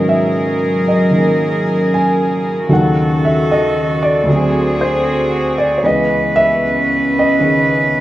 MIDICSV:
0, 0, Header, 1, 3, 480
1, 0, Start_track
1, 0, Key_signature, 5, "minor"
1, 0, Tempo, 789474
1, 1642, Time_signature, 4, 2, 24, 8
1, 4867, End_track
2, 0, Start_track
2, 0, Title_t, "Cello section"
2, 0, Program_c, 0, 48
2, 0, Note_on_c, 0, 49, 53
2, 0, Note_on_c, 0, 54, 57
2, 0, Note_on_c, 0, 68, 54
2, 0, Note_on_c, 0, 70, 72
2, 1619, Note_off_c, 0, 54, 0
2, 1619, Note_off_c, 0, 68, 0
2, 1622, Note_off_c, 0, 70, 0
2, 1643, Note_on_c, 0, 69, 75
2, 1644, Note_on_c, 0, 51, 57
2, 1645, Note_on_c, 0, 66, 62
2, 2571, Note_off_c, 0, 49, 0
2, 2589, Note_off_c, 0, 51, 0
2, 2589, Note_off_c, 0, 69, 0
2, 2590, Note_off_c, 0, 66, 0
2, 2596, Note_on_c, 0, 68, 75
2, 2600, Note_on_c, 0, 66, 63
2, 2603, Note_on_c, 0, 60, 63
2, 2604, Note_on_c, 0, 50, 65
2, 3539, Note_off_c, 0, 68, 0
2, 3541, Note_off_c, 0, 66, 0
2, 3543, Note_off_c, 0, 50, 0
2, 3543, Note_off_c, 0, 60, 0
2, 3556, Note_on_c, 0, 59, 63
2, 3557, Note_on_c, 0, 61, 63
2, 3559, Note_on_c, 0, 71, 68
2, 4867, Note_off_c, 0, 59, 0
2, 4867, Note_off_c, 0, 61, 0
2, 4867, Note_off_c, 0, 71, 0
2, 4867, End_track
3, 0, Start_track
3, 0, Title_t, "Grand piano"
3, 0, Program_c, 1, 0
3, 0, Control_c, 1, 64, 127
3, 0, Note_on_c, 1, 44, 46
3, 0, Note_on_c, 1, 51, 46
3, 0, Note_on_c, 1, 54, 43
3, 0, Note_on_c, 1, 59, 40
3, 0, Note_on_c, 1, 61, 41
3, 0, Note_on_c, 1, 70, 47
3, 0, Note_on_c, 1, 75, 71
3, 54, Note_on_c, 1, 76, 72
3, 509, Note_off_c, 1, 76, 0
3, 537, Note_off_c, 1, 75, 0
3, 537, Note_on_c, 1, 75, 67
3, 666, Note_off_c, 1, 51, 0
3, 675, Note_on_c, 1, 51, 42
3, 683, Note_on_c, 1, 58, 34
3, 693, Note_on_c, 1, 68, 43
3, 1180, Note_on_c, 1, 80, 82
3, 1185, Note_off_c, 1, 75, 0
3, 1628, Note_off_c, 1, 51, 0
3, 1632, Note_off_c, 1, 54, 0
3, 1633, Note_off_c, 1, 44, 0
3, 1635, Note_on_c, 1, 39, 50
3, 1637, Note_on_c, 1, 51, 45
3, 1639, Note_on_c, 1, 49, 38
3, 1641, Note_off_c, 1, 59, 0
3, 1641, Note_on_c, 1, 54, 43
3, 1643, Note_off_c, 1, 61, 0
3, 1645, Note_off_c, 1, 58, 0
3, 1645, Note_on_c, 1, 69, 51
3, 1647, Note_off_c, 1, 70, 0
3, 1649, Control_c, 1, 64, 0
3, 1650, Note_off_c, 1, 68, 0
3, 1660, Note_on_c, 1, 78, 77
3, 1666, Note_off_c, 1, 80, 0
3, 1769, Control_c, 1, 64, 127
3, 1957, Note_off_c, 1, 78, 0
3, 1975, Note_on_c, 1, 76, 76
3, 2115, Note_off_c, 1, 76, 0
3, 2137, Note_on_c, 1, 75, 78
3, 2432, Note_off_c, 1, 75, 0
3, 2448, Note_on_c, 1, 74, 82
3, 2575, Note_on_c, 1, 38, 50
3, 2594, Note_off_c, 1, 39, 0
3, 2594, Note_on_c, 1, 50, 48
3, 2595, Note_off_c, 1, 51, 0
3, 2596, Note_off_c, 1, 49, 0
3, 2597, Note_off_c, 1, 54, 0
3, 2599, Note_off_c, 1, 69, 0
3, 2606, Control_c, 1, 64, 0
3, 2606, Note_on_c, 1, 54, 42
3, 2624, Note_on_c, 1, 60, 48
3, 2641, Note_on_c, 1, 68, 58
3, 2708, Control_c, 1, 64, 127
3, 2925, Note_on_c, 1, 72, 74
3, 2936, Note_off_c, 1, 74, 0
3, 3375, Note_off_c, 1, 72, 0
3, 3394, Note_on_c, 1, 74, 77
3, 3515, Note_off_c, 1, 74, 0
3, 3515, Note_on_c, 1, 73, 56
3, 3538, Note_off_c, 1, 38, 0
3, 3545, Note_off_c, 1, 73, 0
3, 3545, Note_on_c, 1, 37, 48
3, 3548, Note_off_c, 1, 50, 0
3, 3550, Note_on_c, 1, 49, 40
3, 3551, Note_on_c, 1, 59, 39
3, 3551, Note_on_c, 1, 71, 50
3, 3552, Note_on_c, 1, 52, 43
3, 3554, Note_off_c, 1, 54, 0
3, 3556, Control_c, 1, 64, 0
3, 3562, Note_off_c, 1, 60, 0
3, 3563, Note_on_c, 1, 75, 74
3, 3571, Note_off_c, 1, 68, 0
3, 3651, Control_c, 1, 64, 127
3, 3866, Note_on_c, 1, 76, 96
3, 3884, Note_off_c, 1, 75, 0
3, 4370, Note_off_c, 1, 76, 0
3, 4372, Note_on_c, 1, 75, 81
3, 4486, Note_off_c, 1, 49, 0
3, 4495, Note_on_c, 1, 49, 43
3, 4502, Note_on_c, 1, 51, 40
3, 4507, Note_on_c, 1, 61, 41
3, 4517, Note_on_c, 1, 68, 46
3, 4867, Note_off_c, 1, 37, 0
3, 4867, Note_off_c, 1, 49, 0
3, 4867, Note_off_c, 1, 51, 0
3, 4867, Note_off_c, 1, 52, 0
3, 4867, Note_off_c, 1, 59, 0
3, 4867, Note_off_c, 1, 61, 0
3, 4867, Note_off_c, 1, 68, 0
3, 4867, Note_off_c, 1, 71, 0
3, 4867, Note_off_c, 1, 75, 0
3, 4867, End_track
0, 0, End_of_file